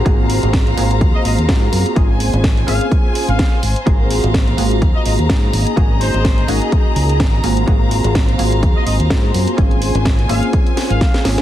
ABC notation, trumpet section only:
X:1
M:4/4
L:1/16
Q:"Swing 16ths" 1/4=126
K:Abmix
V:1 name="Trumpet section"
z8 z e e z4 z | z6 f z4 f3 z2 | z8 z e e z4 z | z2 c4 z8 z2 |
z8 z e e z4 z | z6 f z4 f3 z2 |]